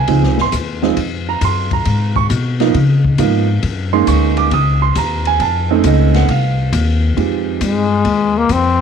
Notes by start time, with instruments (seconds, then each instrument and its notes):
Already playing: grand piano G#5
0.08 upright bass C#2, grand piano F3 G#3 C4 D#4, kick, ride
0.23 upright bass C2, snare
0.38 upright bass G#1, grand piano C6, snare
0.52 upright bass D#2, kick, hi-hat pedal, ride
0.83 grand piano F3 G#3 C4 D#4, snare
0.97 upright bass F2, kick, ride
1.29 grand piano A#5
1.41 upright bass F#2, grand piano C6, kick, hi-hat pedal, ride
1.71 grand piano A#5, kick, ride
1.85 upright bass G#2, kick, ride
2.16 grand piano C#6, kick
2.30 upright bass B2, kick, hi-hat pedal, ride
2.60 grand piano F3 A#3 B3 D#4, snare, ride
2.74 upright bass C#3, kick, ride
3.05 kick
3.18 upright bass G#2, grand piano F3 A#3 B3 D#4, kick, hi-hat pedal, ride
3.63 upright bass F#2, kick, ride
3.93 grand piano G#3 A#3 C#4 D#4 C6
4.07 upright bass D2, grand piano C#6, kick, hi-hat pedal, ride
4.37 grand piano D6, ride
4.51 upright bass C#2, grand piano D#6, kick, ride
4.82 grand piano C6
4.95 upright bass D#2, grand piano A#5, kick, hi-hat pedal, ride
5.25 grand piano G#5, ride
5.40 upright bass F2, grand piano A5, kick, ride
5.71 grand piano A3 C4 C#4 D#4 C5
5.84 upright bass C#2, grand piano D#5, kick, hi-hat pedal, ride
6.14 grand piano F#5, snare, ride
6.28 upright bass C2, grand piano F5, kick, ride
6.72 upright bass D#2, kick, hi-hat pedal, ride
7.17 upright bass F2, grand piano G#3 C4 D#4 F4 G4, kick, ride
7.61 upright bass G2, trombone G#3, kick, hi-hat pedal, ride
8.05 upright bass D#2, kick, ride
8.38 trombone A#3
8.49 upright bass F2, trombone C4, kick, hi-hat pedal, ride